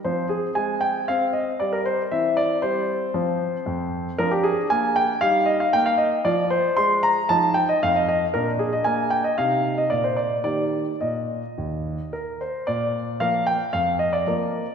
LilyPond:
<<
  \new Staff \with { instrumentName = "Grand piano" } { \time 4/4 \key ees \major \tempo 4 = 115 << { c''8 aes'8 aes''8 g''8 f''8 ees''8 d''16 bes'16 c''8 | e''8 d''8 c''2. | bes'16 g'16 aes'8 aes''8 g''8 f''8 ees''16 f''16 g''16 f''16 ees''8 | d''8 c''8 c'''8 bes''8 a''8 g''16 ees''16 f''16 ees''16 ees''8 |
bes'8 aes'16 ees''16 aes''8 g''16 ees''16 f''8. ees''16 d''16 c''16 d''8 | d''4 ees''2 bes'8 c''8 | \key bes \major d''4 f''8 g''8 f''8 ees''16 d''4~ d''16 | } \\ { c'1 | c'2 c'2 | d'2 ees'2 | f'2 ees'2 |
d'2 ees'4 bes4 | r1 | r1 | } >> }
  \new Staff \with { instrumentName = "Grand piano" } { \clef bass \time 4/4 \key ees \major f4 aes4 c'4 g4 | e4 g4 f4 f,4 | f4 bes4 g4 bes4 | f4 aes4 f4 f,4 |
bes,4 bes4 c4 bes,4 | <ees bes g'>4 bes,4 ees,4 r4 | \key bes \major bes,4 <f bes bes'>4 f,4 <f bes bes'>4 | }
>>